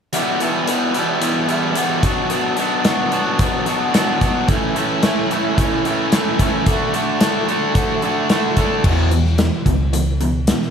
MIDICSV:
0, 0, Header, 1, 4, 480
1, 0, Start_track
1, 0, Tempo, 544465
1, 120, Time_signature, 4, 2, 24, 8
1, 9437, End_track
2, 0, Start_track
2, 0, Title_t, "Overdriven electric guitar"
2, 0, Program_c, 0, 29
2, 116, Note_on_c, 0, 40, 76
2, 122, Note_on_c, 0, 47, 72
2, 128, Note_on_c, 0, 52, 72
2, 129, Note_on_c, 0, 55, 81
2, 136, Note_on_c, 0, 59, 84
2, 139, Note_on_c, 0, 64, 78
2, 343, Note_off_c, 0, 40, 0
2, 350, Note_off_c, 0, 47, 0
2, 351, Note_off_c, 0, 52, 0
2, 353, Note_on_c, 0, 40, 71
2, 355, Note_off_c, 0, 55, 0
2, 360, Note_on_c, 0, 47, 69
2, 362, Note_on_c, 0, 52, 64
2, 366, Note_on_c, 0, 55, 67
2, 367, Note_off_c, 0, 64, 0
2, 369, Note_off_c, 0, 59, 0
2, 373, Note_on_c, 0, 59, 75
2, 377, Note_on_c, 0, 64, 73
2, 582, Note_off_c, 0, 40, 0
2, 586, Note_off_c, 0, 47, 0
2, 590, Note_off_c, 0, 52, 0
2, 592, Note_off_c, 0, 55, 0
2, 593, Note_on_c, 0, 40, 79
2, 596, Note_on_c, 0, 47, 73
2, 600, Note_on_c, 0, 52, 77
2, 603, Note_on_c, 0, 55, 72
2, 605, Note_off_c, 0, 64, 0
2, 610, Note_off_c, 0, 59, 0
2, 613, Note_on_c, 0, 59, 82
2, 615, Note_on_c, 0, 64, 83
2, 823, Note_off_c, 0, 40, 0
2, 828, Note_off_c, 0, 47, 0
2, 832, Note_off_c, 0, 52, 0
2, 834, Note_on_c, 0, 40, 67
2, 837, Note_off_c, 0, 55, 0
2, 839, Note_on_c, 0, 47, 66
2, 843, Note_on_c, 0, 52, 73
2, 844, Note_off_c, 0, 64, 0
2, 847, Note_off_c, 0, 59, 0
2, 847, Note_on_c, 0, 55, 71
2, 851, Note_on_c, 0, 59, 67
2, 855, Note_on_c, 0, 64, 75
2, 1050, Note_off_c, 0, 40, 0
2, 1058, Note_off_c, 0, 47, 0
2, 1061, Note_off_c, 0, 52, 0
2, 1061, Note_on_c, 0, 40, 71
2, 1065, Note_off_c, 0, 55, 0
2, 1068, Note_on_c, 0, 47, 73
2, 1071, Note_on_c, 0, 52, 79
2, 1075, Note_off_c, 0, 64, 0
2, 1076, Note_on_c, 0, 55, 82
2, 1080, Note_off_c, 0, 59, 0
2, 1083, Note_on_c, 0, 59, 83
2, 1086, Note_on_c, 0, 64, 80
2, 1283, Note_off_c, 0, 40, 0
2, 1294, Note_on_c, 0, 40, 62
2, 1295, Note_off_c, 0, 47, 0
2, 1295, Note_off_c, 0, 52, 0
2, 1304, Note_off_c, 0, 55, 0
2, 1306, Note_on_c, 0, 47, 69
2, 1306, Note_on_c, 0, 52, 68
2, 1309, Note_off_c, 0, 64, 0
2, 1313, Note_off_c, 0, 59, 0
2, 1314, Note_on_c, 0, 55, 67
2, 1316, Note_on_c, 0, 59, 70
2, 1319, Note_on_c, 0, 64, 72
2, 1529, Note_off_c, 0, 40, 0
2, 1539, Note_off_c, 0, 47, 0
2, 1540, Note_on_c, 0, 40, 66
2, 1544, Note_off_c, 0, 52, 0
2, 1544, Note_off_c, 0, 55, 0
2, 1550, Note_on_c, 0, 47, 66
2, 1554, Note_off_c, 0, 64, 0
2, 1555, Note_on_c, 0, 52, 74
2, 1555, Note_on_c, 0, 55, 77
2, 1556, Note_off_c, 0, 59, 0
2, 1559, Note_on_c, 0, 59, 78
2, 1565, Note_on_c, 0, 64, 77
2, 1775, Note_off_c, 0, 47, 0
2, 1776, Note_off_c, 0, 40, 0
2, 1783, Note_off_c, 0, 52, 0
2, 1783, Note_off_c, 0, 55, 0
2, 1786, Note_on_c, 0, 47, 62
2, 1788, Note_off_c, 0, 64, 0
2, 1790, Note_on_c, 0, 54, 74
2, 1799, Note_off_c, 0, 59, 0
2, 1799, Note_on_c, 0, 59, 64
2, 1804, Note_on_c, 0, 62, 69
2, 1806, Note_on_c, 0, 66, 73
2, 2013, Note_off_c, 0, 47, 0
2, 2018, Note_off_c, 0, 54, 0
2, 2024, Note_on_c, 0, 47, 75
2, 2026, Note_off_c, 0, 62, 0
2, 2028, Note_on_c, 0, 54, 77
2, 2030, Note_off_c, 0, 59, 0
2, 2030, Note_off_c, 0, 66, 0
2, 2034, Note_on_c, 0, 59, 78
2, 2036, Note_on_c, 0, 62, 78
2, 2040, Note_on_c, 0, 66, 86
2, 2262, Note_off_c, 0, 47, 0
2, 2265, Note_off_c, 0, 54, 0
2, 2272, Note_on_c, 0, 47, 69
2, 2275, Note_off_c, 0, 62, 0
2, 2275, Note_on_c, 0, 54, 64
2, 2277, Note_off_c, 0, 59, 0
2, 2280, Note_on_c, 0, 59, 69
2, 2285, Note_off_c, 0, 66, 0
2, 2286, Note_on_c, 0, 62, 78
2, 2295, Note_on_c, 0, 66, 73
2, 2502, Note_off_c, 0, 47, 0
2, 2505, Note_off_c, 0, 54, 0
2, 2512, Note_on_c, 0, 47, 75
2, 2515, Note_on_c, 0, 54, 85
2, 2518, Note_off_c, 0, 62, 0
2, 2520, Note_off_c, 0, 59, 0
2, 2523, Note_off_c, 0, 66, 0
2, 2523, Note_on_c, 0, 59, 81
2, 2528, Note_on_c, 0, 62, 94
2, 2533, Note_on_c, 0, 66, 85
2, 2739, Note_off_c, 0, 47, 0
2, 2740, Note_off_c, 0, 54, 0
2, 2749, Note_on_c, 0, 47, 68
2, 2751, Note_off_c, 0, 59, 0
2, 2751, Note_on_c, 0, 54, 65
2, 2752, Note_off_c, 0, 62, 0
2, 2754, Note_off_c, 0, 66, 0
2, 2755, Note_on_c, 0, 59, 70
2, 2763, Note_on_c, 0, 62, 73
2, 2765, Note_on_c, 0, 66, 75
2, 2976, Note_off_c, 0, 47, 0
2, 2987, Note_on_c, 0, 47, 83
2, 2988, Note_off_c, 0, 54, 0
2, 2990, Note_off_c, 0, 59, 0
2, 2992, Note_off_c, 0, 62, 0
2, 2999, Note_off_c, 0, 66, 0
2, 2999, Note_on_c, 0, 54, 87
2, 3001, Note_on_c, 0, 59, 83
2, 3002, Note_on_c, 0, 62, 79
2, 3010, Note_on_c, 0, 66, 81
2, 3214, Note_off_c, 0, 47, 0
2, 3222, Note_off_c, 0, 54, 0
2, 3225, Note_on_c, 0, 47, 68
2, 3228, Note_off_c, 0, 59, 0
2, 3231, Note_off_c, 0, 62, 0
2, 3232, Note_on_c, 0, 54, 61
2, 3238, Note_on_c, 0, 59, 71
2, 3239, Note_off_c, 0, 66, 0
2, 3242, Note_on_c, 0, 62, 72
2, 3250, Note_on_c, 0, 66, 71
2, 3453, Note_off_c, 0, 47, 0
2, 3459, Note_off_c, 0, 59, 0
2, 3460, Note_off_c, 0, 54, 0
2, 3463, Note_on_c, 0, 47, 71
2, 3465, Note_off_c, 0, 62, 0
2, 3469, Note_on_c, 0, 59, 72
2, 3470, Note_off_c, 0, 66, 0
2, 3471, Note_on_c, 0, 54, 73
2, 3476, Note_on_c, 0, 62, 80
2, 3481, Note_on_c, 0, 66, 75
2, 3693, Note_off_c, 0, 47, 0
2, 3703, Note_off_c, 0, 54, 0
2, 3704, Note_on_c, 0, 47, 62
2, 3707, Note_off_c, 0, 59, 0
2, 3707, Note_off_c, 0, 62, 0
2, 3714, Note_on_c, 0, 54, 61
2, 3717, Note_off_c, 0, 66, 0
2, 3718, Note_on_c, 0, 59, 66
2, 3718, Note_on_c, 0, 62, 65
2, 3727, Note_on_c, 0, 66, 69
2, 3938, Note_off_c, 0, 47, 0
2, 3943, Note_off_c, 0, 54, 0
2, 3945, Note_off_c, 0, 59, 0
2, 3945, Note_off_c, 0, 62, 0
2, 3947, Note_on_c, 0, 45, 78
2, 3949, Note_off_c, 0, 66, 0
2, 3952, Note_on_c, 0, 52, 76
2, 3955, Note_on_c, 0, 57, 77
2, 3962, Note_on_c, 0, 61, 91
2, 3966, Note_on_c, 0, 64, 85
2, 4173, Note_off_c, 0, 45, 0
2, 4177, Note_off_c, 0, 52, 0
2, 4183, Note_on_c, 0, 45, 63
2, 4187, Note_off_c, 0, 61, 0
2, 4188, Note_on_c, 0, 52, 76
2, 4194, Note_off_c, 0, 57, 0
2, 4195, Note_off_c, 0, 64, 0
2, 4198, Note_on_c, 0, 57, 69
2, 4198, Note_on_c, 0, 61, 76
2, 4205, Note_on_c, 0, 64, 77
2, 4419, Note_off_c, 0, 45, 0
2, 4429, Note_off_c, 0, 52, 0
2, 4430, Note_on_c, 0, 45, 73
2, 4436, Note_off_c, 0, 61, 0
2, 4438, Note_off_c, 0, 57, 0
2, 4440, Note_off_c, 0, 64, 0
2, 4440, Note_on_c, 0, 52, 74
2, 4441, Note_on_c, 0, 57, 83
2, 4446, Note_on_c, 0, 61, 91
2, 4450, Note_on_c, 0, 64, 95
2, 4666, Note_off_c, 0, 45, 0
2, 4671, Note_off_c, 0, 52, 0
2, 4677, Note_on_c, 0, 45, 69
2, 4679, Note_off_c, 0, 61, 0
2, 4681, Note_on_c, 0, 52, 69
2, 4682, Note_off_c, 0, 57, 0
2, 4683, Note_off_c, 0, 64, 0
2, 4686, Note_on_c, 0, 57, 75
2, 4689, Note_on_c, 0, 61, 77
2, 4693, Note_on_c, 0, 64, 78
2, 4902, Note_off_c, 0, 45, 0
2, 4910, Note_off_c, 0, 52, 0
2, 4911, Note_off_c, 0, 57, 0
2, 4913, Note_on_c, 0, 45, 71
2, 4920, Note_off_c, 0, 61, 0
2, 4920, Note_on_c, 0, 52, 74
2, 4921, Note_off_c, 0, 64, 0
2, 4922, Note_on_c, 0, 57, 81
2, 4931, Note_on_c, 0, 61, 81
2, 4931, Note_on_c, 0, 64, 88
2, 5152, Note_off_c, 0, 45, 0
2, 5156, Note_off_c, 0, 52, 0
2, 5162, Note_on_c, 0, 45, 66
2, 5163, Note_off_c, 0, 57, 0
2, 5166, Note_off_c, 0, 61, 0
2, 5167, Note_on_c, 0, 52, 72
2, 5172, Note_off_c, 0, 64, 0
2, 5173, Note_on_c, 0, 57, 77
2, 5177, Note_on_c, 0, 61, 72
2, 5182, Note_on_c, 0, 64, 82
2, 5389, Note_off_c, 0, 45, 0
2, 5396, Note_off_c, 0, 52, 0
2, 5400, Note_on_c, 0, 45, 69
2, 5402, Note_off_c, 0, 57, 0
2, 5406, Note_on_c, 0, 52, 72
2, 5408, Note_off_c, 0, 61, 0
2, 5408, Note_off_c, 0, 64, 0
2, 5412, Note_on_c, 0, 57, 86
2, 5418, Note_on_c, 0, 64, 88
2, 5419, Note_on_c, 0, 61, 76
2, 5625, Note_off_c, 0, 45, 0
2, 5634, Note_off_c, 0, 52, 0
2, 5636, Note_on_c, 0, 45, 60
2, 5638, Note_off_c, 0, 57, 0
2, 5641, Note_off_c, 0, 61, 0
2, 5645, Note_on_c, 0, 52, 65
2, 5648, Note_on_c, 0, 57, 60
2, 5650, Note_off_c, 0, 64, 0
2, 5651, Note_on_c, 0, 61, 69
2, 5661, Note_on_c, 0, 64, 61
2, 5863, Note_off_c, 0, 45, 0
2, 5868, Note_off_c, 0, 52, 0
2, 5870, Note_off_c, 0, 57, 0
2, 5871, Note_off_c, 0, 61, 0
2, 5876, Note_off_c, 0, 64, 0
2, 5877, Note_on_c, 0, 50, 71
2, 5885, Note_on_c, 0, 57, 71
2, 5888, Note_on_c, 0, 62, 82
2, 5891, Note_on_c, 0, 66, 82
2, 6100, Note_off_c, 0, 50, 0
2, 6107, Note_off_c, 0, 57, 0
2, 6110, Note_off_c, 0, 62, 0
2, 6111, Note_on_c, 0, 50, 68
2, 6115, Note_off_c, 0, 66, 0
2, 6118, Note_on_c, 0, 57, 75
2, 6120, Note_on_c, 0, 62, 73
2, 6126, Note_on_c, 0, 66, 75
2, 6340, Note_off_c, 0, 50, 0
2, 6348, Note_off_c, 0, 57, 0
2, 6351, Note_off_c, 0, 62, 0
2, 6351, Note_on_c, 0, 50, 76
2, 6359, Note_off_c, 0, 66, 0
2, 6359, Note_on_c, 0, 57, 81
2, 6362, Note_on_c, 0, 62, 83
2, 6370, Note_on_c, 0, 66, 95
2, 6578, Note_off_c, 0, 50, 0
2, 6584, Note_off_c, 0, 57, 0
2, 6587, Note_off_c, 0, 62, 0
2, 6589, Note_on_c, 0, 50, 70
2, 6593, Note_off_c, 0, 66, 0
2, 6595, Note_on_c, 0, 57, 75
2, 6597, Note_on_c, 0, 62, 80
2, 6604, Note_on_c, 0, 66, 84
2, 6816, Note_off_c, 0, 50, 0
2, 6819, Note_off_c, 0, 57, 0
2, 6826, Note_off_c, 0, 62, 0
2, 6826, Note_on_c, 0, 50, 72
2, 6827, Note_off_c, 0, 66, 0
2, 6830, Note_on_c, 0, 57, 83
2, 6836, Note_on_c, 0, 62, 81
2, 6837, Note_on_c, 0, 66, 81
2, 7066, Note_off_c, 0, 50, 0
2, 7071, Note_off_c, 0, 57, 0
2, 7072, Note_off_c, 0, 62, 0
2, 7077, Note_on_c, 0, 50, 63
2, 7079, Note_off_c, 0, 66, 0
2, 7081, Note_on_c, 0, 57, 71
2, 7083, Note_on_c, 0, 62, 70
2, 7089, Note_on_c, 0, 66, 76
2, 7302, Note_off_c, 0, 50, 0
2, 7307, Note_off_c, 0, 57, 0
2, 7312, Note_on_c, 0, 50, 73
2, 7318, Note_on_c, 0, 57, 76
2, 7319, Note_off_c, 0, 62, 0
2, 7320, Note_off_c, 0, 66, 0
2, 7329, Note_on_c, 0, 62, 84
2, 7331, Note_on_c, 0, 66, 78
2, 7546, Note_off_c, 0, 50, 0
2, 7550, Note_off_c, 0, 57, 0
2, 7556, Note_off_c, 0, 62, 0
2, 7557, Note_on_c, 0, 50, 58
2, 7561, Note_on_c, 0, 57, 65
2, 7563, Note_off_c, 0, 66, 0
2, 7567, Note_on_c, 0, 62, 59
2, 7573, Note_on_c, 0, 66, 60
2, 7783, Note_off_c, 0, 50, 0
2, 7785, Note_off_c, 0, 57, 0
2, 7788, Note_off_c, 0, 62, 0
2, 7792, Note_off_c, 0, 66, 0
2, 7796, Note_on_c, 0, 40, 71
2, 7801, Note_on_c, 0, 47, 77
2, 7806, Note_on_c, 0, 52, 79
2, 8023, Note_off_c, 0, 40, 0
2, 8025, Note_off_c, 0, 47, 0
2, 8028, Note_off_c, 0, 52, 0
2, 8033, Note_on_c, 0, 40, 57
2, 8039, Note_on_c, 0, 47, 66
2, 8252, Note_off_c, 0, 40, 0
2, 8255, Note_off_c, 0, 47, 0
2, 8271, Note_on_c, 0, 40, 57
2, 8275, Note_on_c, 0, 47, 65
2, 8490, Note_off_c, 0, 40, 0
2, 8493, Note_off_c, 0, 47, 0
2, 8512, Note_on_c, 0, 40, 52
2, 8518, Note_on_c, 0, 47, 60
2, 8731, Note_off_c, 0, 40, 0
2, 8734, Note_off_c, 0, 47, 0
2, 8755, Note_on_c, 0, 40, 62
2, 8757, Note_on_c, 0, 47, 67
2, 8972, Note_off_c, 0, 40, 0
2, 8973, Note_off_c, 0, 47, 0
2, 8998, Note_on_c, 0, 40, 57
2, 9004, Note_on_c, 0, 47, 61
2, 9214, Note_off_c, 0, 40, 0
2, 9217, Note_off_c, 0, 47, 0
2, 9252, Note_on_c, 0, 40, 54
2, 9255, Note_on_c, 0, 47, 66
2, 9437, Note_off_c, 0, 40, 0
2, 9437, Note_off_c, 0, 47, 0
2, 9437, End_track
3, 0, Start_track
3, 0, Title_t, "Picked electric bass"
3, 0, Program_c, 1, 34
3, 7795, Note_on_c, 1, 40, 76
3, 8360, Note_off_c, 1, 40, 0
3, 8511, Note_on_c, 1, 37, 74
3, 9266, Note_off_c, 1, 37, 0
3, 9437, End_track
4, 0, Start_track
4, 0, Title_t, "Drums"
4, 113, Note_on_c, 9, 42, 66
4, 201, Note_off_c, 9, 42, 0
4, 356, Note_on_c, 9, 42, 49
4, 444, Note_off_c, 9, 42, 0
4, 595, Note_on_c, 9, 42, 70
4, 683, Note_off_c, 9, 42, 0
4, 832, Note_on_c, 9, 42, 47
4, 920, Note_off_c, 9, 42, 0
4, 1072, Note_on_c, 9, 42, 72
4, 1160, Note_off_c, 9, 42, 0
4, 1311, Note_on_c, 9, 42, 45
4, 1399, Note_off_c, 9, 42, 0
4, 1547, Note_on_c, 9, 42, 67
4, 1635, Note_off_c, 9, 42, 0
4, 1790, Note_on_c, 9, 36, 80
4, 1790, Note_on_c, 9, 42, 52
4, 1878, Note_off_c, 9, 42, 0
4, 1879, Note_off_c, 9, 36, 0
4, 2026, Note_on_c, 9, 42, 66
4, 2114, Note_off_c, 9, 42, 0
4, 2263, Note_on_c, 9, 42, 51
4, 2351, Note_off_c, 9, 42, 0
4, 2508, Note_on_c, 9, 42, 66
4, 2512, Note_on_c, 9, 38, 91
4, 2596, Note_off_c, 9, 42, 0
4, 2600, Note_off_c, 9, 38, 0
4, 2749, Note_on_c, 9, 42, 43
4, 2837, Note_off_c, 9, 42, 0
4, 2989, Note_on_c, 9, 42, 65
4, 2992, Note_on_c, 9, 36, 89
4, 3077, Note_off_c, 9, 42, 0
4, 3080, Note_off_c, 9, 36, 0
4, 3229, Note_on_c, 9, 42, 44
4, 3317, Note_off_c, 9, 42, 0
4, 3475, Note_on_c, 9, 42, 68
4, 3480, Note_on_c, 9, 38, 91
4, 3563, Note_off_c, 9, 42, 0
4, 3568, Note_off_c, 9, 38, 0
4, 3715, Note_on_c, 9, 36, 73
4, 3715, Note_on_c, 9, 42, 48
4, 3803, Note_off_c, 9, 36, 0
4, 3803, Note_off_c, 9, 42, 0
4, 3953, Note_on_c, 9, 42, 64
4, 3955, Note_on_c, 9, 36, 92
4, 4041, Note_off_c, 9, 42, 0
4, 4043, Note_off_c, 9, 36, 0
4, 4195, Note_on_c, 9, 42, 45
4, 4283, Note_off_c, 9, 42, 0
4, 4431, Note_on_c, 9, 42, 69
4, 4436, Note_on_c, 9, 38, 93
4, 4519, Note_off_c, 9, 42, 0
4, 4524, Note_off_c, 9, 38, 0
4, 4680, Note_on_c, 9, 42, 51
4, 4768, Note_off_c, 9, 42, 0
4, 4919, Note_on_c, 9, 36, 92
4, 4921, Note_on_c, 9, 42, 75
4, 5007, Note_off_c, 9, 36, 0
4, 5009, Note_off_c, 9, 42, 0
4, 5159, Note_on_c, 9, 42, 49
4, 5247, Note_off_c, 9, 42, 0
4, 5396, Note_on_c, 9, 42, 71
4, 5400, Note_on_c, 9, 38, 92
4, 5484, Note_off_c, 9, 42, 0
4, 5488, Note_off_c, 9, 38, 0
4, 5637, Note_on_c, 9, 36, 73
4, 5637, Note_on_c, 9, 42, 52
4, 5725, Note_off_c, 9, 36, 0
4, 5725, Note_off_c, 9, 42, 0
4, 5874, Note_on_c, 9, 42, 70
4, 5877, Note_on_c, 9, 36, 88
4, 5962, Note_off_c, 9, 42, 0
4, 5965, Note_off_c, 9, 36, 0
4, 6117, Note_on_c, 9, 42, 50
4, 6205, Note_off_c, 9, 42, 0
4, 6352, Note_on_c, 9, 42, 74
4, 6357, Note_on_c, 9, 38, 96
4, 6440, Note_off_c, 9, 42, 0
4, 6445, Note_off_c, 9, 38, 0
4, 6599, Note_on_c, 9, 42, 48
4, 6687, Note_off_c, 9, 42, 0
4, 6833, Note_on_c, 9, 42, 70
4, 6834, Note_on_c, 9, 36, 95
4, 6921, Note_off_c, 9, 42, 0
4, 6922, Note_off_c, 9, 36, 0
4, 7072, Note_on_c, 9, 42, 44
4, 7161, Note_off_c, 9, 42, 0
4, 7313, Note_on_c, 9, 42, 64
4, 7318, Note_on_c, 9, 38, 92
4, 7401, Note_off_c, 9, 42, 0
4, 7406, Note_off_c, 9, 38, 0
4, 7552, Note_on_c, 9, 42, 49
4, 7554, Note_on_c, 9, 36, 70
4, 7640, Note_off_c, 9, 42, 0
4, 7642, Note_off_c, 9, 36, 0
4, 7794, Note_on_c, 9, 49, 74
4, 7795, Note_on_c, 9, 36, 86
4, 7883, Note_off_c, 9, 36, 0
4, 7883, Note_off_c, 9, 49, 0
4, 8034, Note_on_c, 9, 42, 52
4, 8123, Note_off_c, 9, 42, 0
4, 8158, Note_on_c, 9, 38, 25
4, 8246, Note_off_c, 9, 38, 0
4, 8272, Note_on_c, 9, 42, 67
4, 8276, Note_on_c, 9, 38, 94
4, 8360, Note_off_c, 9, 42, 0
4, 8364, Note_off_c, 9, 38, 0
4, 8516, Note_on_c, 9, 36, 64
4, 8518, Note_on_c, 9, 42, 52
4, 8604, Note_off_c, 9, 36, 0
4, 8606, Note_off_c, 9, 42, 0
4, 8758, Note_on_c, 9, 42, 75
4, 8846, Note_off_c, 9, 42, 0
4, 8997, Note_on_c, 9, 42, 48
4, 9085, Note_off_c, 9, 42, 0
4, 9233, Note_on_c, 9, 42, 75
4, 9237, Note_on_c, 9, 38, 93
4, 9321, Note_off_c, 9, 42, 0
4, 9326, Note_off_c, 9, 38, 0
4, 9363, Note_on_c, 9, 38, 28
4, 9437, Note_off_c, 9, 38, 0
4, 9437, End_track
0, 0, End_of_file